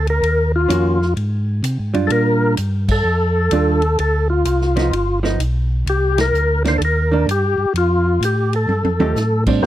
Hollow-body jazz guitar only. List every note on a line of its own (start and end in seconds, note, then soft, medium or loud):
0.69 0.97 D#3 medium
0.69 0.97 A#3 medium
0.69 0.97 C#4 medium
0.69 0.97 F#4 medium
1.94 2.54 G3 medium
1.94 2.54 D4 medium
1.94 2.54 F4 medium
3.52 3.79 G3 medium
3.52 3.80 D4 medium
3.52 3.80 F4 medium
4.76 4.91 F3 medium
4.76 4.91 B3 medium
4.76 4.91 D#4 medium
5.23 5.38 F3 medium
5.23 5.38 B3 medium
5.23 5.39 D#4 medium
6.65 6.79 D#3 medium
6.65 6.79 A#3 medium
6.65 6.80 D4 medium
7.12 7.26 D#3 medium
7.12 7.27 A#3 medium
7.12 7.27 D4 medium
9.00 9.14 F3 medium
9.00 9.14 A3 medium
9.00 9.14 D#4 medium
9.00 9.15 G4 medium
9.47 9.61 G3 medium
9.47 9.62 C4 medium
9.47 9.62 D4 medium